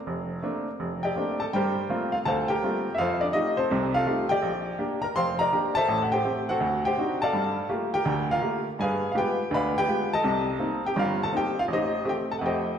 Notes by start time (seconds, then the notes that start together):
Already playing: D5 F5
0.07 F1
0.42 A3 A#3 C4 D4
0.80 F1
1.03 G4 D5 G5
1.16 A3 A#3 C4 D4
1.40 A4 A5
1.53 G2 G3 G4 A#4 C5 G5
1.89 G3 A3 A#3 C4 F4
2.12 F4 F5
2.25 D2 A4 C5 F5 A5
2.48 G4 A#4 G5
2.63 G3 A3 A#3 C4 F4
2.95 F2 E5 F5
3.00 F4 A4 C5
3.21 D4 D5
3.33 A3 D#4 F4 G4 D#5
3.57 C4 A4 C5
3.71 C2 C3
3.94 F4 A4 F5
4.06 A3 D#4 F4 G4
4.29 G4 D5 G5
4.42 A#1
4.79 A#3 D4 G4
5.02 A#4 A#5
5.16 F1 C5 F5 G5 C6
5.39 A#4 D5 A#5
5.52 A#3 D4 G4
5.75 A4 C5 E5 A5
5.88 A1 A2
6.02 F#5
6.12 G4 C5 G5
6.24 A3 C4 G4
6.49 F#4 A4 C5 F#5
6.60 D2
6.85 G4 C5 G5
6.97 C4 D4 D#4 F#4
7.22 A4 D5 F5 A5
7.33 G2 G3
7.69 A3 A#3 F4 G4
7.94 G4 A#4 G5
8.05 D2 D3
8.31 F4 A#4 F5
8.41 A3 A#3 F4 G4
8.79 G2 G#4 B4 F5 G#5
9.12 G#3 B3 F4 G4 F5
9.18 G4 B4 G5
9.51 D2 D3 B5
9.55 B4 D5 F5
9.78 G4 B4 G5
9.87 G#3 B3 F4 G4
10.13 A4 D#5 A5
10.24 C2 C3
10.59 A#3 C4 D#4
10.86 G4 G5
10.96 G1 G2 A#4 F5
11.00 F4
11.23 A4 A5
11.33 A#3 C4 D#4
11.37 G4 G5
11.59 F4 F5
11.68 A1
11.73 D#4 G4 C5 D#5
12.05 A3 C4 G4
12.09 G4 G5
12.32 A4 A5
12.39 F2 A3 F#5
12.45 G4 C5 D#5 G5